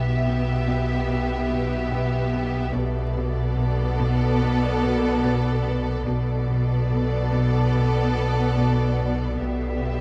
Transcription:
Already playing: double bass section B1, sub bass B1, cello section B2, viola section B3, violin section G4 E5, ambient pad G4 B4 E5
0.26 cello section B2
0.67 cello section B2
1.09 cello section B2
1.51 cello section B2
1.91 cello section B2
2.33 cello section B2
2.74 sub bass B1, double bass section B1, cello section B2, viola section B3, ambient pad A4 B4 D5, violin section A4 D5
3.16 cello section B2
3.58 cello section B2
3.99 cello section B2
4.42 cello section B2
4.83 cello section B2
5.24 cello section B2
5.66 cello section B2
6.07 double bass section B1, sub bass B1, cello section B2, viola section B3, violin section A4 D5, ambient pad A4 B4 D5
6.49 cello section B2
6.91 cello section B2
7.33 cello section B2
7.75 cello section B2
8.17 cello section B2
8.59 cello section B2
9.00 cello section B2
9.39 sub bass B1, double bass section B1, cello section B2, viola section B3, ambient pad G4 B4 E5, violin section G4 E5
9.82 cello section B2

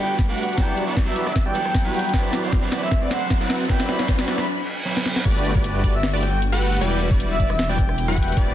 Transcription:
Already playing: detuned saw bass G1, string section A3 B3 D4 F#4 G4, riser
0.00 clean electric guitar G3 B3 D4 F#4 B4, soft synth lead G5
0.19 kick, snare, closed hi-hat
0.28 clean electric guitar G3 B3 D4 F#4 D5, analog polysynth A3 F#4 G4 B4 F#5
0.38 closed hi-hat
0.43 closed hi-hat
0.48 closed hi-hat
0.53 clean electric guitar F#3, closed hi-hat
0.57 detuned saw bass E1, string section E3 F#3 G3, analog polysynth G3 E4 F#4 B4 D5, clean electric guitar B3 D4 E4 G4, soft synth lead G5, kick, snare, closed hi-hat
0.77 closed hi-hat
0.86 clean electric guitar F#3 B3 D4 E4 A4, analog polysynth G3 E4 F#4 B4 D5
0.97 kick, snare, closed hi-hat
1.06 clean electric guitar F#3 B3 D4 E4 G4, soft synth lead E5
1.16 analog polysynth G3 E4 F#4 B4 D5, closed hi-hat
1.25 clean electric guitar F#3 B3 D4 E4 G4, soft synth lead E5, cross-stick
1.36 kick, snare, closed hi-hat
1.46 analog polysynth G3 E4 F#4 B4 D5, soft synth lead G5
1.54 clean electric guitar F#3 B3 D4 E4 A4, closed hi-hat
1.65 cross-stick
1.75 kick, snare, closed hi-hat
1.84 clean electric guitar F#3 B3 D4 E4 B4, analog polysynth G3 E4 F#4 B4 F#5
1.94 soft synth lead G5, closed hi-hat
1.99 closed hi-hat
2.04 closed hi-hat
2.09 clean electric guitar F#3 C4, closed hi-hat
2.13 detuned saw bass D1, analog polysynth C4 E4 F#4 B4 D5, string section C4 D4, clean electric guitar D4 E4 B4, kick, snare, closed hi-hat
2.33 snare, closed hi-hat
2.42 clean electric guitar F#3 C4 D4 E4 C5, analog polysynth C4 E4 F#4 B4 D5
2.52 kick, snare, closed hi-hat
2.62 clean electric guitar F#3 C4 D4 E4 B4
2.72 analog polysynth C4 E4 F#4 B4 D5, snare, closed hi-hat
2.81 clean electric guitar F#3 C4 D4 E4 B4, soft synth lead E5
2.91 kick, snare, closed hi-hat
3.02 analog polysynth C4 E4 F#4 B4 D5, soft synth lead D5
3.10 clean electric guitar F#3 C4 D4 E4 C5, soft synth lead F#5, snare, closed hi-hat
3.30 kick, snare, closed hi-hat
3.40 clean electric guitar F#3 C4 D4 E4 D5, analog polysynth C4 E4 F#4 B4 F#5
3.50 snare, closed hi-hat
3.55 closed hi-hat
3.60 closed hi-hat
3.65 clean electric guitar F#3, closed hi-hat
3.69 detuned saw bass C2, clean electric guitar C4 D4 E4 B4, analog polysynth C4 E4 F#4 B4 D5, string section F#4, soft synth lead G5, kick, snare, closed hi-hat
3.80 snare
3.89 soft synth lead B5, snare, closed hi-hat
3.98 clean electric guitar F#3 C4 D4 E4 C5, analog polysynth C4 E4 F#4 B4 D5, snare
4.08 kick, snare, closed hi-hat
4.18 clean electric guitar F#3 C4 D4 E4 B4, snare
4.28 analog polysynth C4 E4 F#4 B4 D5, snare, closed hi-hat
4.37 clean electric guitar F#3 C4 D4 E4 B4, soft synth lead B5, snare
4.47 reverse cymbal
4.85 clean electric guitar F#3 C4 D4 E4 B4
4.97 snare
5.05 clean electric guitar F#3 C4 D4 E4 B4, snare
5.16 snare
5.25 detuned saw bass G1, string section D3 G3 A3 B3 F#4, analog polysynth A3 F#4 G4 B4 D5, synth pluck D5, kick, closed hi-hat, crash
5.45 closed hi-hat
5.55 analog polysynth A3 F#4 G4 B4 D5, synth pluck D5, kick
5.64 closed hi-hat
5.84 analog polysynth A3 F#4 G4 B4 D5, synth pluck D5, kick, closed hi-hat
5.94 soft synth lead E5
6.03 snare, closed hi-hat
6.13 analog polysynth A3 F#4 G4 B4 D5, synth pluck D5, soft synth lead D5
6.23 soft synth lead G5, closed hi-hat
6.42 closed hi-hat
6.52 analog polysynth A3 F#4 G4 B4 F#5, synth pluck F#5
6.62 closed hi-hat
6.67 closed hi-hat
6.72 closed hi-hat
6.77 closed hi-hat
6.81 detuned saw bass E1, string section F#3 G3 E4, analog polysynth G3 E4 F#4 B4 D5, synth pluck D5, soft synth lead G5, closed hi-hat
7.01 closed hi-hat
7.11 analog polysynth G3 E4 F#4 B4 D5, synth pluck D5, kick
7.20 closed hi-hat
7.30 soft synth lead E5
7.39 analog polysynth G3 E4 F#4 B4 D5, synth pluck D5, kick, closed hi-hat
7.50 soft synth lead E5, cross-stick
7.59 snare, closed hi-hat
7.69 analog polysynth G3 E4 F#4 B4 D5, synth pluck D5, soft synth lead G5
7.78 kick, closed hi-hat
7.89 cross-stick
7.98 closed hi-hat
8.08 analog polysynth G3 E4 F#4 B4 F#5, synth pluck F#5
8.17 soft synth lead G5, kick, closed hi-hat
8.23 closed hi-hat
8.28 closed hi-hat
8.32 closed hi-hat
8.37 detuned saw bass D1, string section F#3 C4, analog polysynth C4 E4 F#4 B4 D5, synth pluck D5, kick, closed hi-hat

